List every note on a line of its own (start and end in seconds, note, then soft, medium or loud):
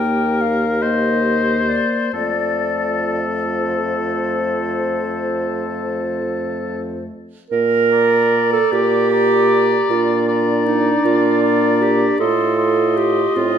0.00 1.81 D#2 soft
0.00 0.80 A#3 soft
0.00 0.81 G4 soft
0.00 0.84 A#4 soft
0.00 0.43 G5 medium
0.41 0.83 F5 medium
0.82 2.11 A#3 soft
0.82 1.79 G4 soft
0.82 2.13 C5 medium
0.82 1.70 D#5 medium
1.68 2.14 D5 soft
2.14 7.12 F2 soft
2.14 7.12 A3 soft
2.14 7.12 F4 soft
2.14 6.81 A4 soft
2.14 3.20 D5 medium
3.55 7.04 C5 soft
7.50 8.58 A#2 medium
7.50 8.48 A#4 medium
7.91 9.10 D5 medium
7.91 9.09 A#5 medium
8.52 8.74 A4 medium
8.72 9.77 A#2 medium
8.72 9.92 G4 medium
9.12 10.25 D5 medium
9.12 10.25 A#5 medium
9.90 10.92 A#2 medium
9.90 12.22 D4 medium
9.90 10.68 F4 medium
10.28 11.41 D5 soft
10.28 11.41 A#5 soft
10.66 11.07 D#4 medium
11.05 12.06 A#2 medium
11.05 11.84 F4 medium
11.42 12.18 D5 soft
11.42 12.18 A#5 soft
11.82 12.19 G4 medium
12.19 13.23 A2 medium
12.19 13.36 F4 medium
12.19 12.99 A4 medium
12.19 12.58 D#5 soft
12.19 12.57 C6 soft
12.57 13.58 D#5 medium
12.57 13.58 C6 soft
12.97 13.37 G4 medium
13.36 13.58 A2 medium
13.36 13.58 C4 medium
13.36 13.58 F4 medium